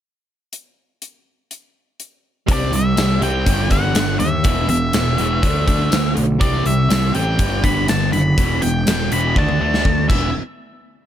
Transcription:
0.53 closed hi-hat
1.02 closed hi-hat
1.51 closed hi-hat
2.00 closed hi-hat
2.47 picked electric bass C2, distorted electric guitar C3 G3 C4, kick, closed hi-hat
2.52 lead electric guitar D5
2.72 picked electric bass C2, distorted electric guitar C3 G3, lead electric guitar E5, closed hi-hat
2.96 picked electric bass C2, distorted electric guitar C3 G3, snare, closed hi-hat, tambourine
3.20 picked electric bass C2, distorted electric guitar C3 G3 C4, lead electric guitar G5, closed hi-hat
3.45 picked electric bass G1, distorted electric guitar G2 D3 G3, kick, closed hi-hat
3.70 picked electric bass G1, distorted electric guitar G2 D3 G3, lead electric guitar F#5, kick, closed hi-hat
3.95 picked electric bass G1, distorted electric guitar G2 D3, snare, closed hi-hat, tambourine
4.19 picked electric bass D#2, distorted electric guitar G2 D3, lead electric guitar E5, closed hi-hat
4.43 picked electric bass E1, distorted electric guitar E2 B2 E3, kick, closed hi-hat
4.68 picked electric bass E1, distorted electric guitar E2 B2, lead electric guitar E5, closed hi-hat
4.93 picked electric bass E1, distorted electric guitar E2 B2, snare, closed hi-hat, tambourine
5.17 picked electric bass E1, distorted electric guitar E2 B2 E3, closed hi-hat
5.42 picked electric bass D2, distorted electric guitar D3 A3 D4, kick, closed hi-hat
5.66 picked electric bass D2, distorted electric guitar D3 A3 D4, kick, closed hi-hat
5.91 picked electric bass D2, distorted electric guitar D3 A3, snare, closed hi-hat, tambourine
6.15 picked electric bass B1, distorted electric guitar D3 A3, closed hi-hat
6.39 picked electric bass C2, distorted electric guitar C3 G3 C4, lead electric guitar D5, kick, closed hi-hat
6.64 picked electric bass C2, distorted electric guitar C3 G3, lead electric guitar E5, closed hi-hat
6.88 picked electric bass C2, distorted electric guitar C3 G3, snare, closed hi-hat, tambourine
7.13 picked electric bass A1, distorted electric guitar C3 G3 C4, lead electric guitar G5, closed hi-hat
7.38 picked electric bass G1, distorted electric guitar G2 D3 G3, kick, closed hi-hat
7.63 picked electric bass G1, distorted electric guitar G2 D3 G3, lead electric guitar B5, kick, closed hi-hat
7.88 picked electric bass G1, distorted electric guitar G2 D3, lead electric guitar A5, snare, closed hi-hat, tambourine
8.12 picked electric bass F#1, distorted electric guitar G2 D3, lead electric guitar B5, closed hi-hat
8.38 picked electric bass E1, distorted electric guitar E2 B2 E3, kick, closed hi-hat
8.62 picked electric bass E1, distorted electric guitar E2 B2, lead electric guitar G5, closed hi-hat
8.87 picked electric bass E1, distorted electric guitar E2 B2, snare, closed hi-hat, tambourine
9.11 picked electric bass E1, distorted electric guitar E2 B2 E3, lead electric guitar B5, closed hi-hat
9.36 picked electric bass D2, distorted electric guitar D3 A3 D4, lead electric guitar A5, kick, high tom
9.49 high tom
9.60 picked electric bass D2, distorted electric guitar D3 A3 D4
9.74 snare
9.85 picked electric bass D2, distorted electric guitar D3 A3, kick
10.09 picked electric bass E1, distorted electric guitar E2 B2 E3, lead electric guitar E5, kick, crash

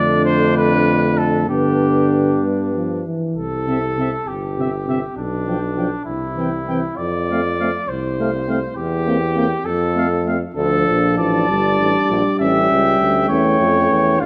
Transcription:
Already playing: bass trombone F2, trombone D3, french horn A3, trumpet D4 D5
0.25 trumpet C5
0.57 trumpet B4
1.18 trumpet A4
1.47 bass trombone G2, trombone D3, french horn B3, trumpet D4 G4
2.43 trombone G3
2.74 trombone F3
3.06 trombone E3
3.35 bass trombone C2, trumpet A4
3.67 trombone C3, french horn C4, trumpet E5
3.98 trombone C3, french horn C4, trumpet E5
4.27 bass trombone G1, trumpet G4
4.58 trombone C3, french horn C4, trumpet E5
4.87 trombone C3, french horn C4, trumpet E5
5.17 bass trombone B1, trumpet D4
5.47 trombone F3, french horn D4, trumpet G5
5.77 trombone F3, french horn D4, trumpet G5
6.05 bass trombone C2, trumpet E4
6.36 trombone E3, french horn C4, trumpet G5
6.68 trombone E3, french horn C4, trumpet G5
6.97 bass trombone F2, trumpet D5
7.30 trombone A3, french horn C4, trumpet F5
7.59 trombone A3, french horn C4, trumpet F5
7.89 bass trombone C2, trumpet C5
8.18 trombone A3, french horn C4, trumpet F5
8.47 trombone A3, french horn C4, trumpet F5
8.77 bass trombone E2, trumpet G4
9.06 trombone A#3, french horn C4, trumpet G5
9.35 trombone A#3, french horn C4, trumpet G5
9.65 bass trombone F2, trumpet A4
9.95 trombone A3, french horn C4, trumpet F5
10.25 trombone A3, french horn C4, trumpet F5
10.54 bass trombone D2, trombone F3, french horn D4, trumpet A4 A5
10.88 bass trombone A#1
11.18 bass trombone A1, trumpet D5
11.49 bass trombone G1, trombone G3, french horn D4
11.80 bass trombone A1
12.09 bass trombone A#1
12.40 bass trombone A1, french horn C#4, trumpet E5 G5
12.70 bass trombone C#2
13.00 bass trombone D2
13.29 bass trombone E2, trombone A3, french horn C#4, trumpet C#5
13.60 bass trombone F2
13.90 bass trombone E2
14.20 bass trombone D2, trombone A3, french horn D4, trumpet F4 F5

